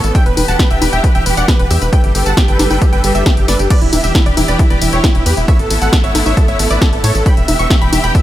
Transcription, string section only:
0.00 0.13 A3 medium
0.00 1.89 B3 medium
0.00 0.13 E4 medium
0.15 1.91 E3 medium
0.15 1.91 D4 medium
0.15 1.91 G4 medium
1.93 3.69 G3 medium
1.93 5.45 D4 medium
1.93 3.69 A4 medium
1.93 3.69 B4 medium
3.70 5.46 E3 medium
3.70 8.22 B3 medium
3.70 5.46 G4 medium
5.48 7.24 A3 medium
5.48 7.24 E4 medium
7.26 8.22 E3 medium
7.26 8.22 D4 medium
7.26 8.22 G4 loud

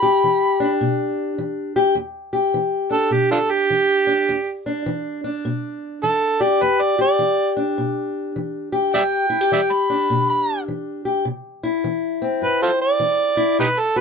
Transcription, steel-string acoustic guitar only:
0.00 0.18 E2 medium
0.00 1.75 G4 medium
0.24 0.76 E3 medium
0.60 1.94 D4 medium
0.81 1.34 B2 medium
1.38 1.92 E3 medium
1.76 1.94 G4 medium
1.95 2.49 E2 medium
2.33 5.83 G4 medium
2.54 3.08 E3 medium
2.90 4.06 D4 medium
3.10 3.65 B2 medium
3.70 4.24 E3 medium
4.07 4.32 D4 medium
4.29 4.82 E2 medium
4.66 5.24 D4 medium
4.86 5.40 E3 medium
5.24 6.65 D4 medium
5.45 5.98 B2 medium
6.03 6.57 E3 medium
6.40 6.98 G4 medium
6.62 7.15 E2 medium
6.99 8.72 G4 medium
7.19 7.73 E3 medium
7.57 8.91 D4 medium
7.78 8.31 B2 medium
8.36 8.89 E3 medium
8.72 9.29 G4 medium
8.94 9.47 E2 medium
9.30 9.41 E4 medium
9.41 11.04 G4 medium
9.52 10.06 E3 medium
9.90 11.24 D4 medium
10.10 10.64 B2 medium
10.68 11.22 E3 medium
11.05 11.24 G4 medium
11.25 11.80 C3 medium
11.63 13.36 E4 medium
11.84 12.38 E3 medium
12.22 13.57 C4 medium
12.42 12.96 G2 medium
13.00 13.54 E3 medium
13.37 13.59 E4 medium
13.59 14.01 B2 medium
13.96 14.01 F#4 medium

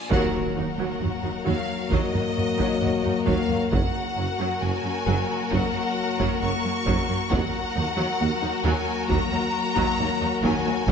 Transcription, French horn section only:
0.09 3.67 F#3 medium
0.09 3.66 A#3 medium
3.71 7.14 F#3 medium
3.71 7.14 A#3 medium
7.31 10.84 F#3 medium
7.31 10.84 A#3 medium
10.89 10.92 A#3 medium

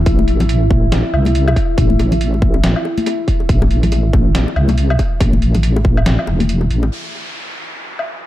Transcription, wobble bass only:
0.06 1.03 A1 loud
1.13 1.55 C2 loud
1.78 2.74 A1 loud
3.49 4.46 A1 loud
4.56 4.98 C2 loud
5.20 6.17 A1 loud
6.28 6.69 E1 medium
6.70 6.91 A1 loud

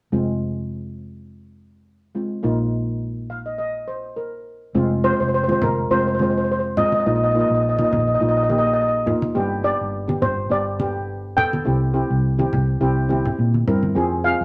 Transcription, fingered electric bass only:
0.12 2.40 F1 medium
2.44 4.71 A#1 medium
4.75 5.10 F1 loud
5.20 5.53 F1 medium
5.62 5.85 F1 medium
5.90 6.82 F1 medium
7.07 7.41 A#1 loud
7.50 7.83 A#1 medium
7.92 8.15 A#1 medium
8.22 9.13 A#1 medium
9.37 9.71 G1 medium
9.81 10.14 G1 medium
10.23 10.46 G1 medium
10.51 11.42 G1 medium
11.66 12.01 C2 loud
12.10 12.44 C2 medium
12.53 12.75 C2 medium
12.81 13.26 C2 medium
13.39 13.64 A#2 medium
13.68 13.93 G2 medium
13.96 14.31 F2 medium
14.41 14.45 F2 medium

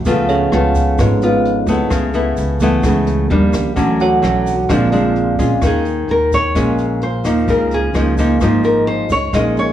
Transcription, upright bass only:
0.06 0.49 C#2 medium
0.51 0.95 C#2 medium
0.98 1.64 G#1 loud
1.66 1.78 C#2 medium
1.91 2.34 C#2 medium
2.38 2.81 C#2 medium
2.83 3.27 C#2 loud
3.30 3.52 D#2 loud
3.54 3.64 C#2 medium
3.76 4.20 D2 medium
4.22 4.66 B1 medium
4.69 5.35 A#1 loud
5.39 5.50 A#1 medium
5.62 6.05 D#2 medium
6.08 6.51 D#2 medium
6.55 7.20 A#1 medium
7.24 7.46 D#2 medium
7.48 7.91 C#2 medium
7.94 8.37 C#2 medium
8.40 9.06 G#1 medium
9.10 9.31 C#2 medium
9.33 9.73 A#1 medium

